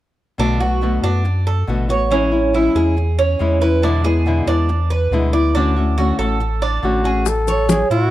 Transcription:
0.38 sub bass B1, nylon-string guitar B2 D3 A3 B3 F#4, cuban tres D4
0.60 nylon-string guitar A3 B3 F#4, cuban tres F#4
0.81 nylon-string guitar B2 D3 A3 B3 F#4
1.03 sub bass F#2, nylon-string guitar A3 B3 F#4, cuban tres D4
1.25 muted nylon-string guitar stroke
1.47 cuban tres A4
1.67 sub bass A1, nylon-string guitar B2 D3 A3 B3 F#4
1.89 nylon-string guitar A3 B3 F#4, cuban tres C#5
2.10 nylon-string guitar E3 G#3 C#4 E4, cuban tres C#4
2.32 nylon-string guitar G#3 C#4 E4
2.53 nylon-string guitar E3 G#3 C#4 E4, cuban tres E4
2.75 sub bass E2, nylon-string guitar G#3 C#4 E4, cuban tres G#4
2.97 muted nylon-string guitar stroke
3.19 cuban tres C#4
3.39 sub bass E2, nylon-string guitar E3 G#3 C#4 E4
3.61 nylon-string guitar G#3 C#4 E4, cuban tres B4
3.82 nylon-string guitar B2 D3 G#3 B3 E4, cuban tres D4
4.04 nylon-string guitar G#3 B3 E4, cuban tres G#4
4.26 nylon-string guitar B2 D3 G#3 B3 E4
4.47 sub bass E2, nylon-string guitar G#3 B3 E4, cuban tres D4
4.69 muted nylon-string guitar stroke
4.90 cuban tres B4
5.11 sub bass D2, nylon-string guitar B2 D3 G#3 B3 E4
5.33 nylon-string guitar G#3 B3 E4, cuban tres D5
5.55 nylon-string guitar D3 A3 C#4 F#4, cuban tres D4
5.76 nylon-string guitar A3 C#4 F#4
5.97 nylon-string guitar D3 A3 C#4 F#4, cuban tres F#4
6.19 sub bass A1, nylon-string guitar A3 C#4 F#4, cuban tres A4
6.40 muted nylon-string guitar stroke
6.62 cuban tres D4
6.83 sub bass A1, nylon-string guitar D3 A3 C#4 F#4, muted trumpet F#4
7.04 nylon-string guitar A3 C#4 F#4, cuban tres G#4
7.26 muted trumpet A4, high bongo, high conga, maracas
7.47 cuban tres C#5, high bongo, high conga, maracas
7.69 muted trumpet G#4, high bongo, high conga, maracas
7.90 sub bass A2, cuban tres E4, muted trumpet F#4, maracas

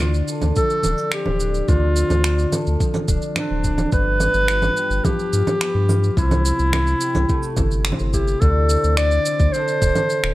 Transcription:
Already playing: sub bass D2, harp D3 C4 E4 A4, clarinet F4
0.00 harp D4, finger snap, low conga, shaker
0.14 shaker
0.28 harp A4, shaker
0.42 sub bass D2, low conga, shaker
0.56 harp F3, clarinet A4, kick, shaker
0.70 shaker
0.83 sub bass D1, harp D4, low conga, shaker
0.98 shaker
1.12 harp C4, clarinet G4, finger snap, shaker
1.26 sub bass D1, low conga
1.40 harp D4, shaker
1.54 shaker
1.68 sub bass D2, harp D3, clarinet F4, kick, low conga, shaker
1.96 harp C4, shaker
2.10 sub bass D2, low conga, shaker
2.24 harp D4, finger snap, shaker
2.39 shaker
2.52 harp A4, low conga, shaker
2.67 sub bass D2, shaker
2.80 harp F3, kick, shaker
2.94 low conga, shaker
3.08 sub bass D1, harp D4, kick, shaker
3.22 shaker
3.36 harp C4, clarinet D4, finger snap, low conga, shaker
3.51 sub bass D1
3.64 harp D4, kick, shaker
3.78 low conga, shaker
3.92 sub bass G1, harp G2, clarinet B4, kick, shaker
4.20 harp B3, low conga, shaker
4.34 sub bass G1, shaker
4.48 harp F4, finger snap, shaker
4.62 low conga, shaker
4.77 harp G4, shaker
4.90 sub bass G1, shaker
5.04 harp F3, clarinet G4, kick, low conga, shaker
5.19 shaker
5.33 sub bass G2, harp F4, shaker
5.47 low conga, shaker
5.61 harp B3, finger snap, shaker
5.75 sub bass G2
5.89 harp F4, low conga, shaker
6.04 shaker
6.17 sub bass C2, harp C3, clarinet E4, kick, shaker
6.31 low conga, shaker
6.45 harp C4, shaker
6.59 sub bass C2, shaker
6.73 harp E4, finger snap, low conga, shaker
6.87 shaker
7.01 harp G4, shaker
7.15 sub bass C2, low conga, shaker
7.29 harp A3, kick, shaker
7.43 shaker
7.57 sub bass G1, harp E4, kick, low conga, shaker
7.71 shaker
7.85 harp C4, finger snap, shaker
7.92 low conga
7.99 sub bass G1, shaker
8.13 harp E4, clarinet G4, kick, shaker
8.28 shaker
8.41 sub bass D2, harp D3, clarinet A4, kick, shaker
8.69 harp C4, shaker
8.84 sub bass D2, shaker
8.97 harp D4, clarinet D5, finger snap, shaker
9.11 shaker
9.26 harp C4, shaker
9.40 sub bass D2, kick, shaker
9.53 harp C4 D4 A4, clarinet C5, shaker
9.68 shaker
9.82 sub bass D1, harp A4, kick, shaker
9.96 low conga, shaker
10.10 shaker
10.24 sub bass D1, finger snap

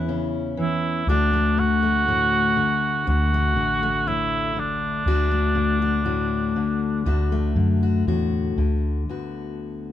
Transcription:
Already playing: fretless electric bass E2, steel-string acoustic guitar E3 B3 E4, cor anglais B4
0.08 steel-string acoustic guitar C#3 C#4
0.57 steel-string acoustic guitar E3, cor anglais E4
1.07 fretless electric bass D2, steel-string acoustic guitar D2 A3 F#4, cor anglais D4
1.33 steel-string acoustic guitar A3
1.57 steel-string acoustic guitar D3, cor anglais F#4
1.83 steel-string acoustic guitar A3
2.07 steel-string acoustic guitar A2 A3
2.57 steel-string acoustic guitar D3
3.07 steel-string acoustic guitar D2 A3, fretless electric bass D2, cor anglais F#4
3.34 steel-string acoustic guitar A3
3.56 fretless electric bass A1, steel-string acoustic guitar D3
3.83 steel-string acoustic guitar A3
4.07 steel-string acoustic guitar A2 A3, cor anglais E4
4.56 steel-string acoustic guitar D3, cor anglais D4
5.06 fretless electric bass D2, steel-string acoustic guitar D2 A3 F#4
5.32 steel-string acoustic guitar A3
5.55 steel-string acoustic guitar D3
5.82 steel-string acoustic guitar F#4
6.04 steel-string acoustic guitar A2 F#4
6.56 steel-string acoustic guitar D3
7.06 steel-string acoustic guitar D2 A3 F#4, fretless electric bass D2
7.32 steel-string acoustic guitar A3
7.56 fretless electric bass F#2, steel-string acoustic guitar D3
7.83 steel-string acoustic guitar F#4
8.07 fretless electric bass E2, steel-string acoustic guitar A2 F#4
8.58 fretless electric bass D2, steel-string acoustic guitar D3
9.09 steel-string acoustic guitar D2 B3 F#4

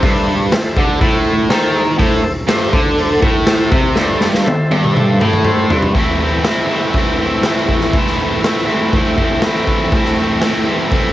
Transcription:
0.03 overdriven electric guitar G2, transistor combo organ A4 C5 E5, kick, open hi-hat
0.52 transistor combo organ A4 C5 E5, muted overdriven electric guitar stroke, snare, open hi-hat
0.77 overdriven electric guitar D3, kick
1.01 overdriven electric guitar A2, transistor combo organ A4 C5 E5, kick, open hi-hat
1.50 overdriven electric guitar D#3, transistor combo organ A4 C5 E5, snare, open hi-hat
1.98 overdriven electric guitar A2, transistor combo organ A4 C5 E5, kick, open hi-hat
2.24 muted overdriven electric guitar stroke
2.48 overdriven electric guitar G2, transistor combo organ A4 C5 E5, snare, open hi-hat
2.73 overdriven electric guitar D3, kick
2.98 transistor combo organ A4 C5 E5, open hi-hat
3.22 overdriven electric guitar A2, kick
3.45 transistor combo organ A4 C5 E5, snare, open hi-hat
3.72 overdriven electric guitar C3, kick
3.95 overdriven electric guitar G2, transistor combo organ A4 C5 E5, snare
4.21 snare
4.34 snare
4.44 transistor combo organ A4 C5 E5, muted overdriven electric guitar stroke, high tom
4.71 overdriven electric guitar G2, high tom
4.84 mid tom
4.93 transistor combo organ A4 C5 E5, mid tom
5.21 overdriven electric guitar A2, mid tom
5.33 mid tom
5.45 transistor combo organ A4 C5 E5 C6, mid tom
5.70 overdriven electric guitar G2, floor tom
5.82 floor tom
5.94 overdriven electric guitar A2 E3 A3, kick, open hi-hat
5.98 overdriven electric guitar C4 E4
6.20 overdriven electric guitar C4 E4
6.25 overdriven electric guitar A3
6.43 overdriven electric guitar E3 A3 C4, snare, open hi-hat
6.48 overdriven electric guitar E4
6.68 overdriven electric guitar E3 A3 C4 E4
6.73 overdriven electric guitar A2
6.94 overdriven electric guitar E3 A3 C4, kick, open hi-hat
6.98 overdriven electric guitar E4
7.18 overdriven electric guitar C4 E4
7.24 overdriven electric guitar A3
7.43 overdriven electric guitar A2 E3 A3, snare, open hi-hat
7.48 overdriven electric guitar C4 E4
7.67 overdriven electric guitar C4 E4, kick
7.73 overdriven electric guitar A3
7.81 snare
7.93 overdriven electric guitar A2 E3 A3, kick, open hi-hat
7.98 overdriven electric guitar C4 E4
8.07 snare
8.18 overdriven electric guitar C4 E4
8.23 overdriven electric guitar A3
8.42 overdriven electric guitar E3 A3 C4, snare, open hi-hat
8.47 overdriven electric guitar E4
8.67 overdriven electric guitar A3 C4 E4
8.71 overdriven electric guitar A2 E3
8.92 overdriven electric guitar E3 A3, kick, open hi-hat
8.96 overdriven electric guitar C4 E4
9.17 overdriven electric guitar C4 E4, kick
9.23 overdriven electric guitar A3
9.42 overdriven electric guitar A2 E3 A3, snare, open hi-hat
9.47 overdriven electric guitar C4 E4
9.67 overdriven electric guitar C4 E4, kick
9.73 overdriven electric guitar A3
9.91 overdriven electric guitar A2 E3 A3 C4, kick, open hi-hat
9.97 overdriven electric guitar E4
10.05 snare
10.17 overdriven electric guitar C4 E4
10.22 overdriven electric guitar A3
10.40 overdriven electric guitar E3 A3, snare, open hi-hat
10.44 overdriven electric guitar C4 E4
10.65 overdriven electric guitar A3 C4 E4
10.69 overdriven electric guitar A2 E3
10.90 overdriven electric guitar E3 A3 C4, kick, open hi-hat
10.95 overdriven electric guitar E4

